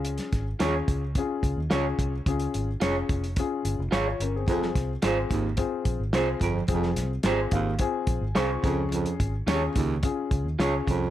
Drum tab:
HH |xxx-x-x-x-x-x-x-|xxx-x-xxx-x-x-x-|x-x-x-x-x-x-x-x-|x-x-x-x-x-x-x-x-|
SD |-oo-o-------o---|----o-------o---|-oo-o-------o---|-oo-o-------o---|
BD |--o---o-o-o---o-|o-----o-o-------|o-o---o-o-o---o-|o-----o-o-o---o-|

HH |xxx-x-x-x-x-x-x-|
SD |----o-------o---|
BD |--o---o-o-o---o-|